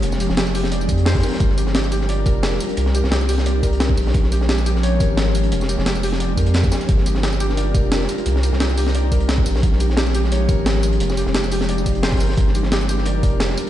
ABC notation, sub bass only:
X:1
M:4/4
L:1/16
Q:"Swing 16ths" 1/4=175
K:Gphr
V:1 name="Sub bass" clef=bass
F,,,3 F,,,6- F,,, F,,4 z2 | G,,,8- G,,,2 F,,,4 z2 | C,,3 C,,8- C,,3 B,,,2 | B,,,8- B,,,2 A,,,6 |
F,,,3 F,,,6- F,,, F,,4 z2 | G,,,8- G,,,2 F,,,4 z2 | C,,3 C,,8- C,,3 B,,,2 | B,,,8- B,,,2 A,,,6 |
F,,,3 F,,,8- F,,,3 G,,,2 | G,,,8- G,,,2 F,,,4 z2 |]